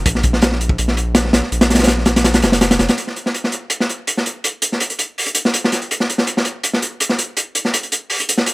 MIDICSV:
0, 0, Header, 1, 3, 480
1, 0, Start_track
1, 0, Tempo, 365854
1, 70, Time_signature, 4, 2, 24, 8
1, 11203, End_track
2, 0, Start_track
2, 0, Title_t, "Sub bass"
2, 0, Program_c, 0, 38
2, 76, Note_on_c, 0, 34, 100
2, 1015, Note_off_c, 0, 34, 0
2, 1032, Note_on_c, 0, 34, 111
2, 1733, Note_off_c, 0, 34, 0
2, 1751, Note_on_c, 0, 34, 95
2, 1864, Note_off_c, 0, 34, 0
2, 1991, Note_on_c, 0, 34, 106
2, 3189, Note_on_c, 0, 29, 89
2, 3209, Note_off_c, 0, 34, 0
2, 3651, Note_off_c, 0, 29, 0
2, 3670, Note_on_c, 0, 29, 96
2, 3783, Note_off_c, 0, 29, 0
2, 11203, End_track
3, 0, Start_track
3, 0, Title_t, "Drums"
3, 74, Note_on_c, 9, 42, 100
3, 76, Note_on_c, 9, 36, 122
3, 199, Note_on_c, 9, 38, 51
3, 205, Note_off_c, 9, 42, 0
3, 208, Note_off_c, 9, 36, 0
3, 305, Note_on_c, 9, 42, 66
3, 312, Note_on_c, 9, 36, 99
3, 330, Note_off_c, 9, 38, 0
3, 436, Note_off_c, 9, 42, 0
3, 436, Note_on_c, 9, 38, 54
3, 443, Note_off_c, 9, 36, 0
3, 547, Note_on_c, 9, 42, 85
3, 558, Note_off_c, 9, 38, 0
3, 558, Note_on_c, 9, 38, 105
3, 679, Note_off_c, 9, 38, 0
3, 679, Note_off_c, 9, 42, 0
3, 679, Note_on_c, 9, 38, 53
3, 797, Note_on_c, 9, 42, 69
3, 810, Note_off_c, 9, 38, 0
3, 910, Note_on_c, 9, 36, 103
3, 929, Note_off_c, 9, 42, 0
3, 1029, Note_on_c, 9, 42, 83
3, 1042, Note_off_c, 9, 36, 0
3, 1154, Note_on_c, 9, 38, 43
3, 1160, Note_off_c, 9, 42, 0
3, 1273, Note_on_c, 9, 42, 71
3, 1285, Note_off_c, 9, 38, 0
3, 1404, Note_off_c, 9, 42, 0
3, 1505, Note_on_c, 9, 38, 117
3, 1506, Note_on_c, 9, 42, 90
3, 1636, Note_off_c, 9, 38, 0
3, 1637, Note_off_c, 9, 42, 0
3, 1640, Note_on_c, 9, 38, 48
3, 1746, Note_off_c, 9, 38, 0
3, 1746, Note_on_c, 9, 38, 106
3, 1754, Note_on_c, 9, 42, 76
3, 1877, Note_off_c, 9, 38, 0
3, 1877, Note_on_c, 9, 38, 38
3, 1886, Note_off_c, 9, 42, 0
3, 1995, Note_on_c, 9, 42, 69
3, 2009, Note_off_c, 9, 38, 0
3, 2113, Note_on_c, 9, 38, 106
3, 2114, Note_off_c, 9, 42, 0
3, 2114, Note_on_c, 9, 42, 73
3, 2233, Note_off_c, 9, 38, 0
3, 2233, Note_on_c, 9, 38, 85
3, 2236, Note_off_c, 9, 42, 0
3, 2236, Note_on_c, 9, 42, 67
3, 2294, Note_off_c, 9, 38, 0
3, 2294, Note_on_c, 9, 38, 88
3, 2297, Note_off_c, 9, 42, 0
3, 2297, Note_on_c, 9, 42, 69
3, 2348, Note_off_c, 9, 38, 0
3, 2348, Note_on_c, 9, 38, 80
3, 2352, Note_off_c, 9, 42, 0
3, 2352, Note_on_c, 9, 42, 64
3, 2405, Note_off_c, 9, 38, 0
3, 2405, Note_on_c, 9, 38, 83
3, 2412, Note_off_c, 9, 42, 0
3, 2412, Note_on_c, 9, 42, 64
3, 2460, Note_off_c, 9, 38, 0
3, 2460, Note_on_c, 9, 38, 100
3, 2468, Note_off_c, 9, 42, 0
3, 2468, Note_on_c, 9, 42, 78
3, 2591, Note_off_c, 9, 38, 0
3, 2597, Note_on_c, 9, 38, 39
3, 2599, Note_off_c, 9, 42, 0
3, 2697, Note_on_c, 9, 42, 77
3, 2702, Note_off_c, 9, 38, 0
3, 2702, Note_on_c, 9, 38, 104
3, 2828, Note_off_c, 9, 42, 0
3, 2833, Note_off_c, 9, 38, 0
3, 2837, Note_on_c, 9, 38, 99
3, 2838, Note_on_c, 9, 42, 84
3, 2944, Note_off_c, 9, 38, 0
3, 2944, Note_on_c, 9, 38, 99
3, 2946, Note_off_c, 9, 42, 0
3, 2946, Note_on_c, 9, 42, 86
3, 3067, Note_off_c, 9, 42, 0
3, 3067, Note_on_c, 9, 42, 77
3, 3073, Note_off_c, 9, 38, 0
3, 3073, Note_on_c, 9, 38, 96
3, 3179, Note_off_c, 9, 42, 0
3, 3179, Note_on_c, 9, 42, 78
3, 3197, Note_off_c, 9, 38, 0
3, 3197, Note_on_c, 9, 38, 107
3, 3308, Note_off_c, 9, 38, 0
3, 3308, Note_on_c, 9, 38, 99
3, 3310, Note_off_c, 9, 42, 0
3, 3322, Note_on_c, 9, 42, 85
3, 3424, Note_off_c, 9, 42, 0
3, 3424, Note_on_c, 9, 42, 87
3, 3426, Note_off_c, 9, 38, 0
3, 3426, Note_on_c, 9, 38, 108
3, 3553, Note_off_c, 9, 38, 0
3, 3553, Note_on_c, 9, 38, 112
3, 3554, Note_off_c, 9, 42, 0
3, 3554, Note_on_c, 9, 42, 87
3, 3663, Note_off_c, 9, 38, 0
3, 3663, Note_off_c, 9, 42, 0
3, 3663, Note_on_c, 9, 38, 92
3, 3663, Note_on_c, 9, 42, 78
3, 3786, Note_off_c, 9, 42, 0
3, 3786, Note_on_c, 9, 42, 76
3, 3794, Note_off_c, 9, 38, 0
3, 3794, Note_on_c, 9, 38, 97
3, 3906, Note_off_c, 9, 42, 0
3, 3906, Note_on_c, 9, 42, 84
3, 3926, Note_off_c, 9, 38, 0
3, 4030, Note_on_c, 9, 38, 44
3, 4037, Note_off_c, 9, 42, 0
3, 4149, Note_on_c, 9, 42, 57
3, 4162, Note_off_c, 9, 38, 0
3, 4276, Note_on_c, 9, 38, 48
3, 4281, Note_off_c, 9, 42, 0
3, 4388, Note_on_c, 9, 42, 79
3, 4407, Note_off_c, 9, 38, 0
3, 4514, Note_on_c, 9, 38, 45
3, 4519, Note_off_c, 9, 42, 0
3, 4619, Note_on_c, 9, 42, 59
3, 4645, Note_off_c, 9, 38, 0
3, 4751, Note_off_c, 9, 42, 0
3, 4853, Note_on_c, 9, 42, 76
3, 4984, Note_off_c, 9, 42, 0
3, 4991, Note_on_c, 9, 38, 45
3, 5110, Note_on_c, 9, 42, 58
3, 5122, Note_off_c, 9, 38, 0
3, 5241, Note_off_c, 9, 42, 0
3, 5344, Note_on_c, 9, 42, 73
3, 5476, Note_off_c, 9, 42, 0
3, 5477, Note_on_c, 9, 38, 40
3, 5588, Note_on_c, 9, 42, 59
3, 5608, Note_off_c, 9, 38, 0
3, 5720, Note_off_c, 9, 42, 0
3, 5826, Note_on_c, 9, 42, 79
3, 5957, Note_off_c, 9, 42, 0
3, 6061, Note_on_c, 9, 42, 66
3, 6192, Note_off_c, 9, 42, 0
3, 6197, Note_on_c, 9, 38, 32
3, 6302, Note_on_c, 9, 42, 80
3, 6328, Note_off_c, 9, 38, 0
3, 6426, Note_off_c, 9, 42, 0
3, 6426, Note_on_c, 9, 42, 44
3, 6543, Note_off_c, 9, 42, 0
3, 6543, Note_on_c, 9, 42, 64
3, 6675, Note_off_c, 9, 42, 0
3, 6796, Note_on_c, 9, 46, 75
3, 6906, Note_on_c, 9, 42, 40
3, 6927, Note_off_c, 9, 46, 0
3, 7015, Note_off_c, 9, 42, 0
3, 7015, Note_on_c, 9, 42, 67
3, 7146, Note_off_c, 9, 42, 0
3, 7152, Note_on_c, 9, 38, 50
3, 7264, Note_on_c, 9, 42, 88
3, 7283, Note_off_c, 9, 38, 0
3, 7396, Note_off_c, 9, 42, 0
3, 7405, Note_on_c, 9, 38, 53
3, 7506, Note_on_c, 9, 42, 63
3, 7508, Note_off_c, 9, 38, 0
3, 7508, Note_on_c, 9, 38, 38
3, 7631, Note_off_c, 9, 42, 0
3, 7631, Note_on_c, 9, 42, 39
3, 7639, Note_off_c, 9, 38, 0
3, 7753, Note_off_c, 9, 42, 0
3, 7753, Note_on_c, 9, 42, 77
3, 7876, Note_on_c, 9, 38, 42
3, 7885, Note_off_c, 9, 42, 0
3, 7998, Note_on_c, 9, 42, 57
3, 8007, Note_off_c, 9, 38, 0
3, 8110, Note_on_c, 9, 38, 48
3, 8130, Note_off_c, 9, 42, 0
3, 8227, Note_on_c, 9, 42, 72
3, 8242, Note_off_c, 9, 38, 0
3, 8358, Note_off_c, 9, 42, 0
3, 8359, Note_on_c, 9, 38, 47
3, 8461, Note_on_c, 9, 42, 70
3, 8490, Note_off_c, 9, 38, 0
3, 8592, Note_off_c, 9, 42, 0
3, 8705, Note_on_c, 9, 42, 79
3, 8836, Note_off_c, 9, 42, 0
3, 8836, Note_on_c, 9, 38, 41
3, 8953, Note_on_c, 9, 42, 61
3, 8967, Note_off_c, 9, 38, 0
3, 9084, Note_off_c, 9, 42, 0
3, 9187, Note_on_c, 9, 42, 79
3, 9307, Note_on_c, 9, 38, 43
3, 9318, Note_off_c, 9, 42, 0
3, 9428, Note_on_c, 9, 42, 64
3, 9438, Note_off_c, 9, 38, 0
3, 9559, Note_off_c, 9, 42, 0
3, 9665, Note_on_c, 9, 42, 73
3, 9796, Note_off_c, 9, 42, 0
3, 9905, Note_on_c, 9, 42, 61
3, 10034, Note_on_c, 9, 38, 37
3, 10037, Note_off_c, 9, 42, 0
3, 10150, Note_on_c, 9, 42, 81
3, 10165, Note_off_c, 9, 38, 0
3, 10275, Note_off_c, 9, 42, 0
3, 10275, Note_on_c, 9, 42, 40
3, 10391, Note_off_c, 9, 42, 0
3, 10391, Note_on_c, 9, 42, 61
3, 10522, Note_off_c, 9, 42, 0
3, 10624, Note_on_c, 9, 46, 74
3, 10755, Note_off_c, 9, 46, 0
3, 10758, Note_on_c, 9, 42, 38
3, 10874, Note_off_c, 9, 42, 0
3, 10874, Note_on_c, 9, 42, 68
3, 10989, Note_on_c, 9, 38, 47
3, 11005, Note_off_c, 9, 42, 0
3, 11103, Note_on_c, 9, 42, 76
3, 11120, Note_off_c, 9, 38, 0
3, 11203, Note_off_c, 9, 42, 0
3, 11203, End_track
0, 0, End_of_file